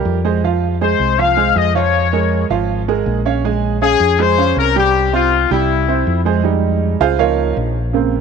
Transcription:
Already playing: grand piano G3 G4 A#4
0.05 fingered electric bass F2
0.25 grand piano G#3 G#4 C5
0.44 grand piano F3 F4 F5
0.81 grand piano G#3 G#4 C5, trumpet section C5
0.99 fingered electric bass C2
1.19 grand piano F3 F4 F5, trumpet section F5
1.37 grand piano G#3 G#4 C5
1.56 fingered electric bass F2, trumpet section D#5
1.75 grand piano F3 F4 F5, trumpet section C#5
2.13 grand piano G#3 G#4 A#4
2.50 fingered electric bass G#1, grand piano F3 F4 F5
2.88 grand piano G#3 G#4 A#4
3.06 fingered electric bass A#1
3.25 grand piano C#4 C#5 F5
3.45 grand piano G#3 G#4 G#5
3.82 grand piano C#4 C#5 F5, trumpet section G#4
4.00 fingered electric bass F2
4.19 grand piano G#3 G#4 G#5, trumpet section C5
4.38 grand piano C#4 C#5 F5
4.56 fingered electric bass C2, trumpet section A#4
4.76 grand piano G3 G4 G5, trumpet section G4
5.13 grand piano C4 C5 F5, trumpet section F4
5.51 fingered electric bass C2, grand piano G3 G4 G5, trumpet section E4
5.88 grand piano C4 C5 E5
6.07 fingered electric bass F2
6.25 grand piano G#3 G#4 C5
6.44 grand piano G3 G#3 D#4
7.00 fingered electric bass C#2, grand piano F4 G#4 C5 F5
7.19 grand piano F3 A#3 D#4 F4 A#4 C#5 F5
7.57 fingered electric bass A#1
7.93 grand piano C#3 A#3 C4

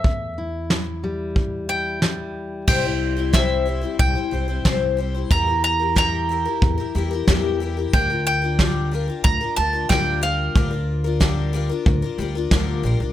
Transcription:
Already playing: mandolin E5
0.04 steel-string acoustic guitar E2, upright bass E2, kick
0.38 steel-string acoustic guitar E4
0.70 steel-string acoustic guitar E3, snare
1.04 steel-string acoustic guitar G3
1.36 steel-string acoustic guitar E2, kick
1.69 steel-string acoustic guitar E4, mandolin G5
2.02 steel-string acoustic guitar E3 G3, snare
2.67 upright bass C2, twelve-string acoustic guitar C3 E3 G3 C4 E4 C5, mandolin G5, kick, crash
2.83 twelve-string acoustic guitar G3 C4 E4 C5
3.17 twelve-string acoustic guitar G3 C4 E4 C5
3.33 twelve-string acoustic guitar C3 E3 G3 C4 E4 C5, mandolin E5, kick, snare
3.66 twelve-string acoustic guitar G3 C4 E4 C5
3.81 twelve-string acoustic guitar G3 C4 E4 C5
3.99 upright bass C2, mandolin G5, kick
4.15 twelve-string acoustic guitar G3 C4 E4 C5
4.31 upright bass C2, twelve-string acoustic guitar G3 C4 E4 C5
4.48 twelve-string acoustic guitar G3 C4 E4 C5
4.65 upright bass C2, twelve-string acoustic guitar C3 E3 G3 C4 E4 C5, kick, snare
4.97 twelve-string acoustic guitar G3 C4 E4 C5
5.15 twelve-string acoustic guitar G3 C4 E4 C5
5.30 upright bass E2, twelve-string acoustic guitar E3 G3 E4 G4 A#4, mandolin A#5, kick
5.47 twelve-string acoustic guitar E4 G4 A#4
5.64 mandolin A#5
5.80 twelve-string acoustic guitar E4 G4 A#4
5.96 twelve-string acoustic guitar E3 G3 E4 G4 A#4, mandolin A#5, kick, snare
6.29 twelve-string acoustic guitar G3 E4 G4 A#4
6.45 twelve-string acoustic guitar E4 G4 A#4
6.62 upright bass E2, kick
6.78 twelve-string acoustic guitar E4 G4 A#4
6.95 upright bass E2, twelve-string acoustic guitar G3 E4 G4 A#4
7.11 twelve-string acoustic guitar E4 G4 A#4
7.28 upright bass E2, twelve-string acoustic guitar E3 G3 E4 G4 A#4, kick, snare
7.60 twelve-string acoustic guitar G3 E4 G4 A#4
7.77 twelve-string acoustic guitar E4 G4 A#4
7.93 upright bass D2, twelve-string acoustic guitar D3 G3 D4 F4 A#4, mandolin G5, kick
8.10 twelve-string acoustic guitar D4 F4 A#4
8.27 mandolin G5
8.42 twelve-string acoustic guitar D4 F4 A#4
8.59 twelve-string acoustic guitar D3 G3 D4 F4 A#4, kick, snare
8.91 twelve-string acoustic guitar G3 D4 F4 A#4
9.08 twelve-string acoustic guitar D4 F4 A#4
9.24 upright bass D2, mandolin A#5, kick
9.41 twelve-string acoustic guitar D4 F4 A#4
9.56 upright bass D2, twelve-string acoustic guitar G3 D4 F4 A#4, mandolin A5
9.73 twelve-string acoustic guitar D4 F4 A#4
9.89 upright bass D2, twelve-string acoustic guitar D3 G3 D4 F4 A#4, mandolin G5, kick, snare
10.21 twelve-string acoustic guitar G3 D4 F4 A#4, mandolin F5
10.55 upright bass D2, twelve-string acoustic guitar D3 G3 D4 F4 A#4, kick
10.71 twelve-string acoustic guitar D4 F4 A#4
11.04 twelve-string acoustic guitar D4 F4 A#4
11.20 twelve-string acoustic guitar D3 G3 D4 F4 A#4, kick, snare
11.53 twelve-string acoustic guitar G3 D4 F4 A#4
11.69 twelve-string acoustic guitar D4 F4 A#4
11.86 upright bass D2, kick
12.02 twelve-string acoustic guitar D4 F4 A#4
12.18 upright bass D2, twelve-string acoustic guitar G3 D4 F4 A#4
12.35 twelve-string acoustic guitar D4 F4 A#4
12.51 upright bass D2, twelve-string acoustic guitar D3 G3 D4 F4 A#4, kick, snare
12.83 upright bass A#1, twelve-string acoustic guitar G3 D4 F4 A#4
13.00 upright bass C2, twelve-string acoustic guitar D4 F4 A#4

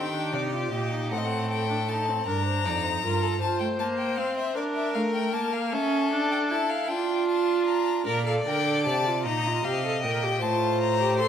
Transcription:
Already playing: cello D#3, viola C4, violin G4 G5
0.14 viola D4
0.33 cello C3, viola D#4, violin D5
0.53 viola F4
0.72 cello A#2, viola G4, violin D#5
0.92 viola D#4
1.11 cello A2, viola C4, violin A4 F#5
1.18 violin D#5
1.25 violin F#5
1.50 violin G5
1.69 viola D4
1.88 viola D#4, violin A5
2.08 viola C4
2.26 cello G2, viola D4, violin A#4 A#5
2.45 violin C5
2.65 cello F2, viola D#4, violin D5
2.83 violin C5
3.03 cello G2, viola F4, violin A#4
3.22 violin A4
3.41 viola F4, violin C5 A5
3.60 viola A3, violin G5
3.79 viola A#3, violin A5
3.98 violin G5
4.18 viola C4, violin F5
4.37 violin E5
4.55 viola D4, violin A#4 D5
4.75 violin E5
4.94 viola A3, violin F5
5.13 violin G5
5.33 viola A#3, violin A5
5.53 violin F5
5.72 viola C#4, violin A4 E5
6.12 viola D4
6.31 violin G5
6.50 viola E4, violin A5
6.69 violin F5
6.88 violin D4 G5, viola F4
7.28 violin A5
7.67 violin A#5
8.06 cello A#2, viola A#4, violin D5 A#5
8.26 viola A4, violin F5
8.46 cello D3, viola A#4, violin G5
8.66 viola A4
8.85 cello C3, viola G4, violin A5
9.06 viola F4
9.25 cello A#2, viola D#4, violin D#5 A#5
9.45 viola F4
9.64 cello C3, viola G4, violin F5
9.85 viola A4
10.02 cello A#2, viola A#4, violin G5
10.23 viola G4
10.41 cello A2, viola F4, violin C5 A5
10.80 violin A#5
11.00 viola G4
11.19 viola A4, violin C6

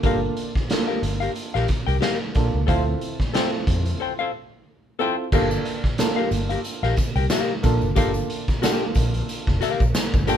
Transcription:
0.03 fingered electric bass G1, upright piano A#3 D4 F4 A4, hollow-body jazz guitar G4 A#4 F5, kick, closed hi-hat
0.37 closed hi-hat
0.55 muted fingered electric bass stroke, kick, snare
0.70 upright piano A#3 D4 F4 A4, snare, closed hi-hat
0.88 hollow-body jazz guitar G4 A#4 F5
1.02 fingered electric bass G1, closed hi-hat
1.20 hollow-body jazz guitar G4 A#4 F5, closed hi-hat
1.35 closed hi-hat
1.54 fingered electric bass A#1, hollow-body jazz guitar G4 A#4 F5, snare
1.68 kick, snare, closed hi-hat
1.87 fingered electric bass C2, hollow-body jazz guitar G4 A#4 G5, closed hi-hat
2.01 hollow-body jazz guitar G4 A#4 F5, snare, closed hi-hat
2.35 fingered electric bass A#1, upright piano A#3 D4 F4 A4, kick, snare, closed hi-hat
2.54 fingered electric bass C#2
2.67 fingered electric bass D2, upright piano C4 E4 F4 A4, hollow-body jazz guitar A4 C5 F5, kick, closed hi-hat
3.01 closed hi-hat
3.20 muted fingered electric bass stroke, kick, snare
3.34 upright piano C4 E4 F4 A4, hollow-body jazz guitar A4 C5 G5, snare, closed hi-hat
3.67 fingered electric bass F2, kick, closed hi-hat
3.86 closed hi-hat
4.00 hollow-body jazz guitar A4 C5 G5
4.19 hollow-body jazz guitar A4 C5 F5
4.99 upright piano C4 E4 F4 A4, hollow-body jazz guitar A4 C5 G5
5.32 fingered electric bass G1, upright piano A#3 D4 F4 A4, hollow-body jazz guitar G4 A#4 F5, kick, crash, tambourine
5.51 tambourine
5.65 closed hi-hat
5.84 muted fingered electric bass stroke, kick, snare
5.98 upright piano A#3 D4 F4 A4, snare, closed hi-hat, tambourine
6.16 hollow-body jazz guitar G4 A#4 F5
6.31 fingered electric bass G1, closed hi-hat, tambourine
6.49 hollow-body jazz guitar G4 A#4 F5, closed hi-hat
6.64 closed hi-hat, tambourine
6.83 fingered electric bass A#1, hollow-body jazz guitar G4 A#4 F5, snare
6.97 kick, snare, closed hi-hat, tambourine
7.16 fingered electric bass C2, hollow-body jazz guitar G4 A#4 G5, closed hi-hat
7.30 hollow-body jazz guitar G4 A#4 F5, snare, closed hi-hat, tambourine
7.63 fingered electric bass A#1, upright piano A#3 D4 F4 A4, kick, snare, closed hi-hat, tambourine
7.81 fingered electric bass F#1, tambourine
7.96 fingered electric bass G1, upright piano A#3 D4 F4 A4, hollow-body jazz guitar G4 A#4 F5, kick, closed hi-hat, tambourine
8.14 tambourine
8.30 closed hi-hat
8.48 muted fingered electric bass stroke, kick, snare, tambourine
8.62 upright piano A#3 D4 F4 A4, hollow-body jazz guitar G4 A#4 G5, snare, closed hi-hat, tambourine
8.95 fingered electric bass A#1, kick, closed hi-hat, tambourine
9.14 closed hi-hat
9.29 closed hi-hat, tambourine
9.47 fingered electric bass F1, kick, snare
9.61 hollow-body jazz guitar G4 A#4 F5, snare, closed hi-hat, tambourine
9.80 fingered electric bass A#1, kick, tambourine
9.95 snare, closed hi-hat, tambourine
10.14 fingered electric bass G1, kick, tambourine
10.27 upright piano A#3 D4 F4 A4, hollow-body jazz guitar G4 A#4 G5, snare, closed hi-hat, tambourine

